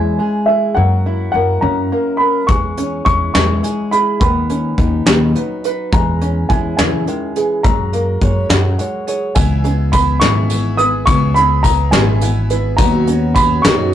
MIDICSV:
0, 0, Header, 1, 7, 480
1, 0, Start_track
1, 0, Tempo, 572519
1, 647, Time_signature, 6, 3, 24, 8
1, 11690, End_track
2, 0, Start_track
2, 0, Title_t, "Upright piano"
2, 0, Program_c, 0, 0
2, 0, Note_on_c, 0, 80, 64
2, 384, Note_on_c, 0, 76, 67
2, 410, Note_off_c, 0, 80, 0
2, 625, Note_on_c, 0, 78, 75
2, 643, Note_off_c, 0, 76, 0
2, 1092, Note_off_c, 0, 78, 0
2, 1105, Note_on_c, 0, 78, 81
2, 1351, Note_on_c, 0, 82, 73
2, 1364, Note_off_c, 0, 78, 0
2, 1820, Note_on_c, 0, 83, 77
2, 1854, Note_off_c, 0, 82, 0
2, 2057, Note_off_c, 0, 83, 0
2, 2070, Note_on_c, 0, 85, 74
2, 2545, Note_off_c, 0, 85, 0
2, 2557, Note_on_c, 0, 85, 85
2, 2786, Note_off_c, 0, 85, 0
2, 2798, Note_on_c, 0, 85, 74
2, 3281, Note_on_c, 0, 83, 81
2, 3298, Note_off_c, 0, 85, 0
2, 3508, Note_off_c, 0, 83, 0
2, 3522, Note_on_c, 0, 83, 68
2, 4691, Note_off_c, 0, 83, 0
2, 4974, Note_on_c, 0, 82, 73
2, 5440, Note_on_c, 0, 80, 77
2, 5465, Note_off_c, 0, 82, 0
2, 5662, Note_off_c, 0, 80, 0
2, 5675, Note_on_c, 0, 80, 69
2, 6400, Note_on_c, 0, 82, 66
2, 6423, Note_off_c, 0, 80, 0
2, 7330, Note_off_c, 0, 82, 0
2, 7838, Note_on_c, 0, 80, 64
2, 8316, Note_on_c, 0, 83, 78
2, 8337, Note_off_c, 0, 80, 0
2, 8548, Note_on_c, 0, 85, 78
2, 8569, Note_off_c, 0, 83, 0
2, 9004, Note_off_c, 0, 85, 0
2, 9033, Note_on_c, 0, 87, 89
2, 9269, Note_on_c, 0, 85, 86
2, 9287, Note_off_c, 0, 87, 0
2, 9500, Note_off_c, 0, 85, 0
2, 9511, Note_on_c, 0, 83, 88
2, 9741, Note_off_c, 0, 83, 0
2, 9750, Note_on_c, 0, 82, 82
2, 9986, Note_on_c, 0, 80, 70
2, 10005, Note_off_c, 0, 82, 0
2, 10502, Note_off_c, 0, 80, 0
2, 10703, Note_on_c, 0, 82, 78
2, 11160, Note_off_c, 0, 82, 0
2, 11189, Note_on_c, 0, 83, 86
2, 11419, Note_on_c, 0, 85, 72
2, 11444, Note_off_c, 0, 83, 0
2, 11690, Note_off_c, 0, 85, 0
2, 11690, End_track
3, 0, Start_track
3, 0, Title_t, "Steel-string acoustic guitar"
3, 0, Program_c, 1, 25
3, 0, Note_on_c, 1, 52, 67
3, 0, Note_on_c, 1, 56, 50
3, 0, Note_on_c, 1, 61, 53
3, 0, Note_on_c, 1, 64, 55
3, 166, Note_on_c, 1, 68, 58
3, 411, Note_off_c, 1, 64, 0
3, 415, Note_on_c, 1, 64, 53
3, 618, Note_off_c, 1, 56, 0
3, 643, Note_on_c, 1, 54, 68
3, 647, Note_off_c, 1, 68, 0
3, 669, Note_off_c, 1, 52, 0
3, 669, Note_off_c, 1, 64, 0
3, 894, Note_on_c, 1, 64, 49
3, 1130, Note_on_c, 1, 70, 58
3, 1356, Note_off_c, 1, 61, 0
3, 1359, Note_on_c, 1, 61, 51
3, 1604, Note_off_c, 1, 70, 0
3, 1615, Note_on_c, 1, 70, 52
3, 1839, Note_off_c, 1, 70, 0
3, 1849, Note_on_c, 1, 70, 58
3, 2060, Note_off_c, 1, 70, 0
3, 2063, Note_off_c, 1, 64, 0
3, 2080, Note_on_c, 1, 52, 69
3, 2086, Note_off_c, 1, 54, 0
3, 2324, Note_off_c, 1, 61, 0
3, 2328, Note_on_c, 1, 61, 49
3, 2561, Note_on_c, 1, 64, 56
3, 2798, Note_on_c, 1, 56, 54
3, 3045, Note_on_c, 1, 68, 54
3, 3278, Note_off_c, 1, 64, 0
3, 3289, Note_on_c, 1, 64, 55
3, 3495, Note_off_c, 1, 52, 0
3, 3495, Note_off_c, 1, 56, 0
3, 3500, Note_off_c, 1, 64, 0
3, 3526, Note_off_c, 1, 68, 0
3, 3527, Note_on_c, 1, 51, 63
3, 3552, Note_off_c, 1, 61, 0
3, 3770, Note_on_c, 1, 61, 53
3, 4008, Note_on_c, 1, 63, 55
3, 4244, Note_on_c, 1, 54, 52
3, 4486, Note_on_c, 1, 71, 54
3, 4725, Note_off_c, 1, 63, 0
3, 4735, Note_on_c, 1, 63, 54
3, 4938, Note_off_c, 1, 71, 0
3, 4939, Note_off_c, 1, 51, 0
3, 4966, Note_off_c, 1, 54, 0
3, 4971, Note_off_c, 1, 63, 0
3, 4974, Note_on_c, 1, 52, 73
3, 5211, Note_off_c, 1, 61, 0
3, 5214, Note_on_c, 1, 61, 49
3, 5453, Note_on_c, 1, 64, 51
3, 5683, Note_off_c, 1, 52, 0
3, 5686, Note_on_c, 1, 49, 56
3, 5927, Note_off_c, 1, 49, 0
3, 5932, Note_on_c, 1, 51, 55
3, 6167, Note_off_c, 1, 51, 0
3, 6170, Note_on_c, 1, 52, 57
3, 6381, Note_off_c, 1, 64, 0
3, 6409, Note_off_c, 1, 52, 0
3, 6412, Note_on_c, 1, 54, 68
3, 6654, Note_on_c, 1, 70, 48
3, 6901, Note_on_c, 1, 73, 60
3, 7130, Note_off_c, 1, 61, 0
3, 7133, Note_on_c, 1, 66, 50
3, 7371, Note_off_c, 1, 73, 0
3, 7381, Note_on_c, 1, 73, 57
3, 7605, Note_off_c, 1, 73, 0
3, 7615, Note_on_c, 1, 73, 57
3, 7822, Note_off_c, 1, 66, 0
3, 7822, Note_off_c, 1, 70, 0
3, 7822, Note_off_c, 1, 73, 0
3, 7849, Note_off_c, 1, 54, 0
3, 11690, End_track
4, 0, Start_track
4, 0, Title_t, "Five-string banjo"
4, 0, Program_c, 2, 105
4, 0, Note_on_c, 2, 56, 62
4, 0, Note_on_c, 2, 61, 59
4, 0, Note_on_c, 2, 64, 84
4, 146, Note_off_c, 2, 56, 0
4, 156, Note_on_c, 2, 56, 54
4, 399, Note_on_c, 2, 68, 60
4, 407, Note_off_c, 2, 61, 0
4, 641, Note_off_c, 2, 56, 0
4, 643, Note_off_c, 2, 68, 0
4, 644, Note_on_c, 2, 58, 74
4, 645, Note_off_c, 2, 64, 0
4, 889, Note_on_c, 2, 64, 62
4, 1121, Note_off_c, 2, 58, 0
4, 1131, Note_on_c, 2, 58, 57
4, 1367, Note_on_c, 2, 66, 69
4, 1601, Note_off_c, 2, 58, 0
4, 1611, Note_on_c, 2, 58, 56
4, 1849, Note_off_c, 2, 64, 0
4, 1851, Note_on_c, 2, 70, 58
4, 2088, Note_off_c, 2, 66, 0
4, 2089, Note_off_c, 2, 58, 0
4, 2090, Note_off_c, 2, 70, 0
4, 2092, Note_on_c, 2, 56, 68
4, 2329, Note_on_c, 2, 61, 62
4, 2557, Note_off_c, 2, 56, 0
4, 2567, Note_on_c, 2, 56, 59
4, 2809, Note_on_c, 2, 64, 79
4, 3037, Note_off_c, 2, 56, 0
4, 3047, Note_on_c, 2, 56, 58
4, 3289, Note_off_c, 2, 61, 0
4, 3289, Note_on_c, 2, 68, 63
4, 3528, Note_off_c, 2, 56, 0
4, 3529, Note_off_c, 2, 64, 0
4, 3529, Note_off_c, 2, 68, 0
4, 3533, Note_on_c, 2, 59, 70
4, 3771, Note_on_c, 2, 61, 56
4, 4001, Note_off_c, 2, 59, 0
4, 4011, Note_on_c, 2, 59, 55
4, 4255, Note_on_c, 2, 63, 73
4, 4484, Note_off_c, 2, 59, 0
4, 4494, Note_on_c, 2, 59, 62
4, 4730, Note_off_c, 2, 61, 0
4, 4738, Note_on_c, 2, 71, 73
4, 4971, Note_off_c, 2, 59, 0
4, 4971, Note_off_c, 2, 63, 0
4, 4973, Note_off_c, 2, 71, 0
4, 4973, Note_on_c, 2, 56, 74
4, 5211, Note_on_c, 2, 61, 65
4, 5447, Note_off_c, 2, 56, 0
4, 5457, Note_on_c, 2, 56, 62
4, 5694, Note_on_c, 2, 64, 78
4, 5926, Note_off_c, 2, 56, 0
4, 5936, Note_on_c, 2, 56, 59
4, 6169, Note_off_c, 2, 61, 0
4, 6174, Note_on_c, 2, 68, 64
4, 6403, Note_off_c, 2, 56, 0
4, 6411, Note_off_c, 2, 64, 0
4, 6411, Note_off_c, 2, 68, 0
4, 6413, Note_on_c, 2, 56, 75
4, 6649, Note_on_c, 2, 58, 63
4, 6880, Note_off_c, 2, 56, 0
4, 6890, Note_on_c, 2, 56, 65
4, 7131, Note_on_c, 2, 66, 80
4, 7356, Note_off_c, 2, 56, 0
4, 7366, Note_on_c, 2, 56, 58
4, 7606, Note_on_c, 2, 68, 62
4, 7608, Note_off_c, 2, 58, 0
4, 7847, Note_off_c, 2, 56, 0
4, 7847, Note_off_c, 2, 68, 0
4, 7849, Note_off_c, 2, 66, 0
4, 7850, Note_on_c, 2, 59, 74
4, 8087, Note_on_c, 2, 61, 59
4, 8314, Note_off_c, 2, 59, 0
4, 8324, Note_on_c, 2, 59, 61
4, 8565, Note_on_c, 2, 64, 76
4, 8798, Note_off_c, 2, 59, 0
4, 8808, Note_on_c, 2, 59, 57
4, 9040, Note_on_c, 2, 71, 72
4, 9047, Note_off_c, 2, 61, 0
4, 9270, Note_off_c, 2, 59, 0
4, 9281, Note_on_c, 2, 59, 75
4, 9526, Note_off_c, 2, 64, 0
4, 9530, Note_on_c, 2, 61, 66
4, 9757, Note_off_c, 2, 59, 0
4, 9767, Note_on_c, 2, 59, 66
4, 10001, Note_on_c, 2, 64, 78
4, 10003, Note_off_c, 2, 71, 0
4, 10234, Note_off_c, 2, 59, 0
4, 10244, Note_on_c, 2, 59, 68
4, 10483, Note_on_c, 2, 71, 69
4, 10488, Note_off_c, 2, 61, 0
4, 10714, Note_off_c, 2, 59, 0
4, 10723, Note_off_c, 2, 64, 0
4, 10724, Note_off_c, 2, 71, 0
4, 10724, Note_on_c, 2, 59, 77
4, 10961, Note_on_c, 2, 61, 66
4, 11194, Note_off_c, 2, 59, 0
4, 11204, Note_on_c, 2, 59, 68
4, 11444, Note_on_c, 2, 63, 93
4, 11674, Note_off_c, 2, 59, 0
4, 11690, Note_off_c, 2, 61, 0
4, 11690, Note_off_c, 2, 63, 0
4, 11690, End_track
5, 0, Start_track
5, 0, Title_t, "Twelve-string acoustic guitar"
5, 0, Program_c, 3, 25
5, 7848, Note_on_c, 3, 49, 63
5, 7849, Note_on_c, 3, 52, 64
5, 7854, Note_on_c, 3, 59, 60
5, 7856, Note_on_c, 3, 64, 68
5, 7856, Note_on_c, 3, 68, 72
5, 8072, Note_off_c, 3, 68, 0
5, 8082, Note_on_c, 3, 68, 46
5, 8084, Note_off_c, 3, 64, 0
5, 8088, Note_off_c, 3, 49, 0
5, 8088, Note_off_c, 3, 52, 0
5, 8091, Note_off_c, 3, 59, 0
5, 8094, Note_on_c, 3, 64, 41
5, 8102, Note_on_c, 3, 59, 35
5, 8322, Note_on_c, 3, 52, 47
5, 8323, Note_off_c, 3, 59, 0
5, 8325, Note_off_c, 3, 64, 0
5, 8325, Note_off_c, 3, 68, 0
5, 8333, Note_on_c, 3, 59, 53
5, 8335, Note_on_c, 3, 64, 54
5, 8340, Note_on_c, 3, 68, 49
5, 8556, Note_off_c, 3, 68, 0
5, 8559, Note_off_c, 3, 64, 0
5, 8564, Note_off_c, 3, 59, 0
5, 8565, Note_off_c, 3, 52, 0
5, 8566, Note_on_c, 3, 68, 63
5, 8569, Note_on_c, 3, 64, 58
5, 8574, Note_on_c, 3, 59, 57
5, 8576, Note_on_c, 3, 52, 53
5, 8579, Note_on_c, 3, 49, 53
5, 8792, Note_off_c, 3, 52, 0
5, 8800, Note_off_c, 3, 59, 0
5, 8802, Note_on_c, 3, 52, 55
5, 8804, Note_off_c, 3, 64, 0
5, 8807, Note_off_c, 3, 68, 0
5, 8810, Note_on_c, 3, 59, 48
5, 8813, Note_off_c, 3, 49, 0
5, 8814, Note_on_c, 3, 64, 64
5, 8819, Note_on_c, 3, 68, 59
5, 9032, Note_off_c, 3, 68, 0
5, 9039, Note_off_c, 3, 64, 0
5, 9042, Note_on_c, 3, 68, 41
5, 9045, Note_off_c, 3, 52, 0
5, 9045, Note_off_c, 3, 59, 0
5, 9049, Note_on_c, 3, 64, 37
5, 9055, Note_on_c, 3, 59, 33
5, 9281, Note_off_c, 3, 59, 0
5, 9285, Note_off_c, 3, 68, 0
5, 9286, Note_off_c, 3, 64, 0
5, 9287, Note_on_c, 3, 49, 67
5, 9291, Note_on_c, 3, 59, 64
5, 9292, Note_on_c, 3, 52, 67
5, 9296, Note_on_c, 3, 64, 69
5, 9298, Note_on_c, 3, 68, 68
5, 9515, Note_off_c, 3, 68, 0
5, 9524, Note_off_c, 3, 64, 0
5, 9525, Note_on_c, 3, 68, 50
5, 9527, Note_off_c, 3, 49, 0
5, 9529, Note_off_c, 3, 52, 0
5, 9529, Note_off_c, 3, 59, 0
5, 9534, Note_on_c, 3, 64, 50
5, 9543, Note_on_c, 3, 59, 36
5, 9766, Note_off_c, 3, 59, 0
5, 9766, Note_off_c, 3, 68, 0
5, 9770, Note_off_c, 3, 64, 0
5, 9771, Note_on_c, 3, 52, 58
5, 9776, Note_on_c, 3, 59, 52
5, 9780, Note_on_c, 3, 64, 59
5, 9790, Note_on_c, 3, 68, 55
5, 9999, Note_off_c, 3, 68, 0
5, 10000, Note_off_c, 3, 64, 0
5, 10005, Note_off_c, 3, 59, 0
5, 10009, Note_off_c, 3, 52, 0
5, 10009, Note_on_c, 3, 68, 64
5, 10010, Note_on_c, 3, 64, 65
5, 10016, Note_on_c, 3, 59, 59
5, 10019, Note_on_c, 3, 52, 67
5, 10020, Note_on_c, 3, 49, 49
5, 10240, Note_off_c, 3, 52, 0
5, 10243, Note_off_c, 3, 59, 0
5, 10247, Note_off_c, 3, 68, 0
5, 10248, Note_off_c, 3, 64, 0
5, 10250, Note_on_c, 3, 52, 58
5, 10253, Note_off_c, 3, 49, 0
5, 10253, Note_on_c, 3, 59, 58
5, 10259, Note_on_c, 3, 64, 52
5, 10265, Note_on_c, 3, 68, 61
5, 10476, Note_off_c, 3, 68, 0
5, 10487, Note_on_c, 3, 68, 39
5, 10488, Note_off_c, 3, 52, 0
5, 10488, Note_off_c, 3, 64, 0
5, 10489, Note_off_c, 3, 59, 0
5, 10498, Note_on_c, 3, 64, 41
5, 10505, Note_on_c, 3, 59, 35
5, 10720, Note_off_c, 3, 59, 0
5, 10724, Note_on_c, 3, 51, 73
5, 10726, Note_off_c, 3, 68, 0
5, 10729, Note_off_c, 3, 64, 0
5, 10729, Note_on_c, 3, 54, 69
5, 10730, Note_on_c, 3, 59, 70
5, 10732, Note_on_c, 3, 61, 66
5, 10740, Note_on_c, 3, 66, 80
5, 10952, Note_off_c, 3, 66, 0
5, 10962, Note_on_c, 3, 66, 44
5, 10963, Note_off_c, 3, 61, 0
5, 10965, Note_off_c, 3, 51, 0
5, 10967, Note_off_c, 3, 54, 0
5, 10967, Note_off_c, 3, 59, 0
5, 10973, Note_on_c, 3, 61, 47
5, 10981, Note_on_c, 3, 59, 39
5, 11200, Note_off_c, 3, 59, 0
5, 11203, Note_off_c, 3, 66, 0
5, 11207, Note_on_c, 3, 54, 55
5, 11209, Note_off_c, 3, 61, 0
5, 11210, Note_on_c, 3, 59, 58
5, 11219, Note_on_c, 3, 61, 62
5, 11220, Note_on_c, 3, 66, 60
5, 11437, Note_off_c, 3, 66, 0
5, 11440, Note_off_c, 3, 59, 0
5, 11441, Note_off_c, 3, 61, 0
5, 11445, Note_off_c, 3, 54, 0
5, 11447, Note_on_c, 3, 66, 74
5, 11451, Note_on_c, 3, 59, 65
5, 11451, Note_on_c, 3, 61, 62
5, 11454, Note_on_c, 3, 54, 58
5, 11456, Note_on_c, 3, 51, 58
5, 11679, Note_off_c, 3, 54, 0
5, 11685, Note_off_c, 3, 66, 0
5, 11687, Note_off_c, 3, 59, 0
5, 11687, Note_off_c, 3, 61, 0
5, 11689, Note_off_c, 3, 51, 0
5, 11690, End_track
6, 0, Start_track
6, 0, Title_t, "Upright bass"
6, 0, Program_c, 4, 32
6, 0, Note_on_c, 4, 40, 91
6, 143, Note_off_c, 4, 40, 0
6, 641, Note_on_c, 4, 42, 81
6, 1091, Note_off_c, 4, 42, 0
6, 1123, Note_on_c, 4, 42, 71
6, 1344, Note_off_c, 4, 42, 0
6, 1361, Note_on_c, 4, 42, 87
6, 1583, Note_off_c, 4, 42, 0
6, 2085, Note_on_c, 4, 40, 71
6, 2533, Note_off_c, 4, 40, 0
6, 2566, Note_on_c, 4, 40, 65
6, 2785, Note_off_c, 4, 40, 0
6, 2804, Note_on_c, 4, 40, 92
6, 3025, Note_off_c, 4, 40, 0
6, 3528, Note_on_c, 4, 39, 78
6, 3974, Note_off_c, 4, 39, 0
6, 4007, Note_on_c, 4, 39, 78
6, 4226, Note_off_c, 4, 39, 0
6, 4241, Note_on_c, 4, 39, 96
6, 4463, Note_off_c, 4, 39, 0
6, 4968, Note_on_c, 4, 40, 88
6, 5414, Note_off_c, 4, 40, 0
6, 5449, Note_on_c, 4, 40, 81
6, 5667, Note_off_c, 4, 40, 0
6, 5687, Note_on_c, 4, 40, 100
6, 5906, Note_off_c, 4, 40, 0
6, 6407, Note_on_c, 4, 42, 84
6, 6854, Note_off_c, 4, 42, 0
6, 6887, Note_on_c, 4, 42, 74
6, 7106, Note_off_c, 4, 42, 0
6, 7121, Note_on_c, 4, 42, 94
6, 7343, Note_off_c, 4, 42, 0
6, 7845, Note_on_c, 4, 37, 88
6, 8532, Note_off_c, 4, 37, 0
6, 8561, Note_on_c, 4, 32, 94
6, 9251, Note_off_c, 4, 32, 0
6, 9280, Note_on_c, 4, 37, 87
6, 9969, Note_off_c, 4, 37, 0
6, 9995, Note_on_c, 4, 32, 104
6, 10686, Note_off_c, 4, 32, 0
6, 10717, Note_on_c, 4, 39, 88
6, 11406, Note_off_c, 4, 39, 0
6, 11441, Note_on_c, 4, 42, 101
6, 11690, Note_off_c, 4, 42, 0
6, 11690, End_track
7, 0, Start_track
7, 0, Title_t, "Drums"
7, 2086, Note_on_c, 9, 36, 86
7, 2087, Note_on_c, 9, 42, 66
7, 2169, Note_off_c, 9, 36, 0
7, 2171, Note_off_c, 9, 42, 0
7, 2325, Note_on_c, 9, 42, 55
7, 2409, Note_off_c, 9, 42, 0
7, 2566, Note_on_c, 9, 36, 68
7, 2566, Note_on_c, 9, 42, 50
7, 2650, Note_off_c, 9, 36, 0
7, 2650, Note_off_c, 9, 42, 0
7, 2808, Note_on_c, 9, 38, 94
7, 2808, Note_on_c, 9, 42, 67
7, 2891, Note_off_c, 9, 38, 0
7, 2891, Note_off_c, 9, 42, 0
7, 3050, Note_on_c, 9, 42, 56
7, 3134, Note_off_c, 9, 42, 0
7, 3289, Note_on_c, 9, 42, 56
7, 3373, Note_off_c, 9, 42, 0
7, 3528, Note_on_c, 9, 36, 83
7, 3529, Note_on_c, 9, 42, 63
7, 3612, Note_off_c, 9, 36, 0
7, 3613, Note_off_c, 9, 42, 0
7, 3770, Note_on_c, 9, 42, 54
7, 3853, Note_off_c, 9, 42, 0
7, 4008, Note_on_c, 9, 36, 64
7, 4011, Note_on_c, 9, 42, 47
7, 4091, Note_off_c, 9, 36, 0
7, 4095, Note_off_c, 9, 42, 0
7, 4246, Note_on_c, 9, 38, 101
7, 4246, Note_on_c, 9, 42, 60
7, 4330, Note_off_c, 9, 38, 0
7, 4330, Note_off_c, 9, 42, 0
7, 4489, Note_on_c, 9, 42, 52
7, 4573, Note_off_c, 9, 42, 0
7, 4729, Note_on_c, 9, 42, 51
7, 4813, Note_off_c, 9, 42, 0
7, 4967, Note_on_c, 9, 42, 70
7, 4968, Note_on_c, 9, 36, 96
7, 5051, Note_off_c, 9, 42, 0
7, 5052, Note_off_c, 9, 36, 0
7, 5210, Note_on_c, 9, 42, 44
7, 5293, Note_off_c, 9, 42, 0
7, 5449, Note_on_c, 9, 36, 62
7, 5450, Note_on_c, 9, 42, 51
7, 5532, Note_off_c, 9, 36, 0
7, 5534, Note_off_c, 9, 42, 0
7, 5689, Note_on_c, 9, 38, 90
7, 5689, Note_on_c, 9, 42, 65
7, 5773, Note_off_c, 9, 38, 0
7, 5773, Note_off_c, 9, 42, 0
7, 5930, Note_on_c, 9, 42, 56
7, 6013, Note_off_c, 9, 42, 0
7, 6168, Note_on_c, 9, 42, 57
7, 6252, Note_off_c, 9, 42, 0
7, 6409, Note_on_c, 9, 36, 94
7, 6409, Note_on_c, 9, 42, 77
7, 6493, Note_off_c, 9, 36, 0
7, 6493, Note_off_c, 9, 42, 0
7, 6650, Note_on_c, 9, 42, 49
7, 6733, Note_off_c, 9, 42, 0
7, 6887, Note_on_c, 9, 42, 54
7, 6888, Note_on_c, 9, 36, 64
7, 6971, Note_off_c, 9, 36, 0
7, 6971, Note_off_c, 9, 42, 0
7, 7126, Note_on_c, 9, 38, 100
7, 7126, Note_on_c, 9, 42, 75
7, 7210, Note_off_c, 9, 38, 0
7, 7210, Note_off_c, 9, 42, 0
7, 7369, Note_on_c, 9, 42, 59
7, 7453, Note_off_c, 9, 42, 0
7, 7609, Note_on_c, 9, 42, 55
7, 7693, Note_off_c, 9, 42, 0
7, 7843, Note_on_c, 9, 54, 85
7, 7846, Note_on_c, 9, 36, 90
7, 7848, Note_on_c, 9, 42, 66
7, 7927, Note_off_c, 9, 54, 0
7, 7930, Note_off_c, 9, 36, 0
7, 7932, Note_off_c, 9, 42, 0
7, 8087, Note_on_c, 9, 42, 49
7, 8171, Note_off_c, 9, 42, 0
7, 8324, Note_on_c, 9, 42, 52
7, 8324, Note_on_c, 9, 54, 85
7, 8325, Note_on_c, 9, 36, 61
7, 8408, Note_off_c, 9, 36, 0
7, 8408, Note_off_c, 9, 42, 0
7, 8408, Note_off_c, 9, 54, 0
7, 8563, Note_on_c, 9, 38, 86
7, 8563, Note_on_c, 9, 42, 72
7, 8564, Note_on_c, 9, 54, 23
7, 8647, Note_off_c, 9, 38, 0
7, 8647, Note_off_c, 9, 42, 0
7, 8648, Note_off_c, 9, 54, 0
7, 8802, Note_on_c, 9, 54, 74
7, 8804, Note_on_c, 9, 42, 57
7, 8886, Note_off_c, 9, 54, 0
7, 8888, Note_off_c, 9, 42, 0
7, 9041, Note_on_c, 9, 42, 54
7, 9125, Note_off_c, 9, 42, 0
7, 9280, Note_on_c, 9, 42, 77
7, 9281, Note_on_c, 9, 36, 85
7, 9281, Note_on_c, 9, 54, 83
7, 9364, Note_off_c, 9, 42, 0
7, 9365, Note_off_c, 9, 36, 0
7, 9365, Note_off_c, 9, 54, 0
7, 9521, Note_on_c, 9, 42, 51
7, 9605, Note_off_c, 9, 42, 0
7, 9759, Note_on_c, 9, 42, 55
7, 9760, Note_on_c, 9, 36, 64
7, 9765, Note_on_c, 9, 54, 90
7, 9843, Note_off_c, 9, 42, 0
7, 9844, Note_off_c, 9, 36, 0
7, 9848, Note_off_c, 9, 54, 0
7, 10002, Note_on_c, 9, 38, 99
7, 10002, Note_on_c, 9, 42, 72
7, 10086, Note_off_c, 9, 38, 0
7, 10086, Note_off_c, 9, 42, 0
7, 10241, Note_on_c, 9, 42, 62
7, 10241, Note_on_c, 9, 54, 77
7, 10325, Note_off_c, 9, 42, 0
7, 10325, Note_off_c, 9, 54, 0
7, 10478, Note_on_c, 9, 42, 62
7, 10562, Note_off_c, 9, 42, 0
7, 10716, Note_on_c, 9, 42, 82
7, 10718, Note_on_c, 9, 54, 80
7, 10719, Note_on_c, 9, 36, 87
7, 10800, Note_off_c, 9, 42, 0
7, 10802, Note_off_c, 9, 36, 0
7, 10802, Note_off_c, 9, 54, 0
7, 10960, Note_on_c, 9, 42, 58
7, 11044, Note_off_c, 9, 42, 0
7, 11196, Note_on_c, 9, 42, 59
7, 11198, Note_on_c, 9, 36, 69
7, 11201, Note_on_c, 9, 54, 91
7, 11280, Note_off_c, 9, 42, 0
7, 11282, Note_off_c, 9, 36, 0
7, 11285, Note_off_c, 9, 54, 0
7, 11441, Note_on_c, 9, 38, 100
7, 11441, Note_on_c, 9, 42, 76
7, 11525, Note_off_c, 9, 38, 0
7, 11525, Note_off_c, 9, 42, 0
7, 11690, End_track
0, 0, End_of_file